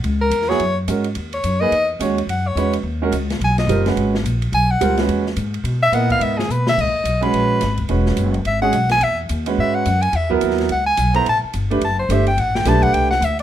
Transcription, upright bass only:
0.04 0.30 C#2 medium
0.30 0.58 E2 medium
0.60 0.87 F#2 medium
0.88 1.15 G#2 medium
1.16 1.43 D#2 medium
1.44 1.70 F#2 medium
1.71 1.99 E2 medium
1.99 2.26 D#2 medium
2.27 2.55 F#2 medium
2.56 2.83 E2 medium
2.83 3.11 D#2 medium
3.12 3.39 C#2 medium
3.40 3.66 B1 medium
3.67 3.95 F#1 medium
3.96 4.23 G#1 medium
4.24 4.51 A#1 medium
4.52 4.80 B1 medium
4.81 5.07 C#2 loud
5.08 5.35 E2 medium
5.37 5.63 G#2 medium
5.64 5.91 B2 medium
5.92 6.19 A#2 medium
6.19 6.47 G#2 medium
6.48 6.76 B2 medium
6.78 6.93 C#2 medium
6.94 muted upright bass stroke soft
7.04 7.31 B1 medium
7.33 7.60 A#1 medium
7.62 7.88 G#1 medium
7.89 8.16 E1 medium
8.17 8.44 F#1 medium
8.45 8.72 G#1 medium
8.73 9.00 B1 medium
9.01 9.28 E2 medium
9.30 9.56 D#2 medium
9.58 9.85 G#2 medium
9.86 10.12 F#2 loud
10.13 10.40 E2 medium
10.42 10.69 D#2 loud
10.70 10.97 C#2 medium
10.98 11.25 B1 medium
11.26 11.41 A1 medium
11.44 muted upright bass stroke soft
11.54 11.81 G1 medium
11.81 12.08 F#1 medium
12.09 12.36 G1 medium
12.37 12.64 A1 medium
12.65 12.92 B1 medium
12.93 13.20 C2 medium
13.21 13.43 D2 loud

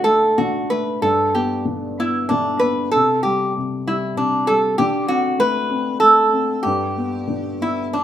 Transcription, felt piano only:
0.00 0.38 D3 medium
0.00 0.05 A3 soft
0.05 0.69 A3 soft
0.38 1.01 D3 soft
0.70 1.02 A3 soft
1.01 2.90 G2 medium
1.35 1.97 B3 soft
1.65 2.29 D3 soft
1.98 2.60 B3 soft
2.31 2.92 D3 medium
2.62 2.93 B3 soft
2.95 3.56 C3 medium
3.25 3.86 G3 medium
3.57 4.15 C3 soft
3.87 4.47 G3 medium
4.17 4.76 C3 soft
4.49 4.78 G3 soft
4.79 6.60 D3 medium
5.08 5.68 C4 medium
5.38 6.01 A3 soft
5.70 6.31 C4 medium
6.02 6.62 A3 soft
6.33 6.63 C4 medium
6.65 8.04 G2 medium
6.97 7.59 B3 soft
7.27 8.04 D3 soft
7.61 8.04 B3 soft
7.93 8.04 D4 soft

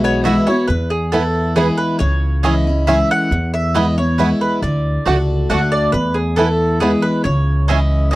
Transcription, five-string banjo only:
0.00 0.24 E4 medium
0.04 0.65 B3 medium
0.25 0.46 E4 medium
0.47 0.69 E4 medium
1.13 1.23 B3 medium
1.13 1.23 E4 medium
1.57 1.67 B3 medium
1.57 1.67 E4 medium
2.45 2.54 C#4 medium
2.45 2.54 E4 medium
2.88 2.98 C#4 medium
2.88 2.98 E4 medium
3.75 3.85 B3 medium
3.75 3.86 E4 medium
4.20 4.29 B3 medium
4.20 4.29 E4 medium
5.07 5.17 A3 soft
5.07 5.17 D4 medium
5.07 5.17 F#4 medium
5.51 5.60 A3 medium
5.51 5.61 D4 medium
5.51 5.61 F#4 medium
6.39 6.48 B3 medium
6.39 6.48 E4 medium
6.82 6.92 B3 medium
6.82 6.92 E4 medium
7.70 7.80 C#4 medium
7.70 7.80 E4 medium

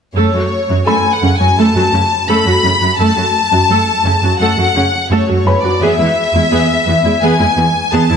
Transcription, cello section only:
0.16 0.23 F#2 soft
0.34 0.41 F#2 soft
0.69 0.76 F#2 soft
0.86 0.94 F#2 soft
1.22 1.29 F#2 soft
1.40 1.47 F#2 soft
1.57 1.64 F#2 soft
1.75 1.82 F#2 soft
1.93 2.00 F#2 soft
2.28 2.35 F#2 soft
2.46 2.53 F#2 soft
2.63 2.70 F#2 soft
2.81 2.88 F#2 soft
2.99 3.06 F#2 soft
3.16 3.23 F#2 soft
3.52 3.59 F#2 soft
3.69 3.76 F#2 soft
4.05 4.12 F#2 soft
4.22 4.29 F#2 soft
4.40 4.47 F#2 soft
4.57 4.64 F#2 soft
4.74 4.82 F#2 soft
5.09 5.17 F#2 soft
5.28 5.35 F#2 soft
5.45 5.52 F#2 soft
5.63 5.70 F#2 soft
5.81 5.88 E2 soft
5.98 6.05 E2 soft
6.34 6.41 E2 soft
6.51 6.58 E2 soft
6.87 6.94 E2 soft
7.04 7.11 E2 soft
7.22 7.29 E2 medium
7.40 7.47 E2 soft
7.58 7.65 E2 soft
7.94 8.01 E2 medium
8.11 8.17 E2 soft

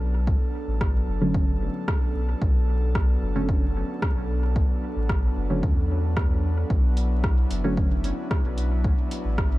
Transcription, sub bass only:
0.00 0.35 B1 loud
0.68 1.02 A1 medium
1.08 1.69 F#1 medium
2.15 2.35 B1 medium
2.42 3.17 B1 loud
3.22 3.84 F#1 medium
4.16 4.64 B1 loud
4.96 5.31 A1 medium
5.36 5.62 F#1 medium
5.63 6.65 E2 medium
6.70 7.45 B1 loud
7.51 8.12 F#1 medium
8.44 8.92 B1 loud
9.25 9.58 A1 medium

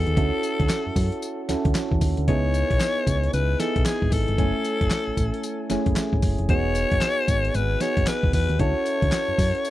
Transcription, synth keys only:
0.00 0.20 B3 medium
0.00 0.20 D#4 medium
0.00 0.17 F#4 medium
0.00 0.20 G#4 medium
0.17 1.01 C#4 medium
0.17 1.01 E4 medium
0.17 1.01 F#4 medium
0.17 1.02 A4 medium
1.49 2.13 C#4 medium
1.49 2.14 E4 medium
1.49 2.14 F#4 medium
1.49 2.14 A4 medium
2.28 3.12 B3 medium
2.28 3.12 D#4 medium
2.28 3.12 E4 medium
2.28 3.13 G#4 medium
3.59 4.24 B3 medium
3.59 4.24 D#4 medium
3.59 4.24 E4 medium
3.59 4.25 G#4 medium
4.38 5.22 A3 medium
4.38 5.22 C#4 medium
4.38 5.23 E4 medium
4.38 5.23 G#5 medium
5.70 6.35 A3 medium
5.70 6.35 C#4 medium
5.70 6.35 E4 medium
5.70 6.35 G#4 medium
6.49 7.33 B3 medium
6.49 7.33 D#4 medium
6.49 7.33 F#4 medium
6.49 7.34 G#4 medium
7.81 8.45 B3 medium
7.81 8.45 D#4 medium
7.81 8.46 F#4 medium
7.81 8.46 G#4 medium
8.59 9.43 C#4 medium
8.59 9.44 E4 medium
8.59 9.44 F#4 medium
8.59 9.44 A4 medium

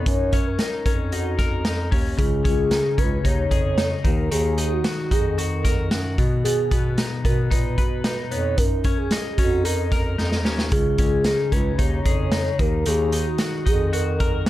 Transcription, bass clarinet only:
0.06 0.56 F#2 loud
0.86 1.62 F2 medium
1.66 1.88 F2 medium
1.92 2.15 D#2 medium
2.19 2.41 C#2 medium
2.45 2.79 C#2 loud
2.98 3.26 C#2 medium
3.25 3.53 D#2 medium
3.51 3.97 F2 medium
4.05 4.27 D#2 medium
4.31 4.81 D#2 loud
5.11 5.87 F2 medium
5.91 6.14 F#2 medium
6.18 6.63 B2 medium
6.71 7.05 B2 loud
7.25 7.48 B2 medium
7.51 7.74 A#2 medium
7.78 8.23 B2 medium
8.31 8.54 F2 medium
8.58 9.08 F#2 medium
9.38 10.15 F2 medium
10.18 10.47 F2 loud
10.45 10.68 D#2 medium
10.72 10.95 C#2 medium
10.99 11.33 C#2 loud
11.52 11.80 C#2 medium
11.79 12.07 D#2 medium
12.05 12.51 F2 medium
12.59 12.82 D#2 medium
12.86 13.37 D#2 loud
13.67 14.43 F2 medium

